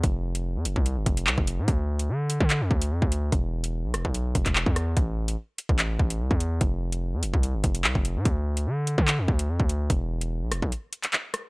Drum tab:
HH |x--x--x-x-xx--x-|x--x--x-x--x--x-|x--x--x-x-xx--x-|x--x--x-x--x--x-|
CP |------------x---|--------x-------|-----------xx---|--------x-------|
SD |----------------|----------------|------r-------r-|----------------|
BD |o------o--o--o--|o------o--o--o--|o------o--oo-o--|o------o--o--o--|

HH |x--x--x-x-xx--x-|x--x--x-x--x--x-|x--x--x-x-xx--x-|
CP |------------x---|--------x-------|-----------xx---|
SD |----------------|----------------|------r-------r-|
BD |o------o--o--o--|o------o--o--o--|o------o--------|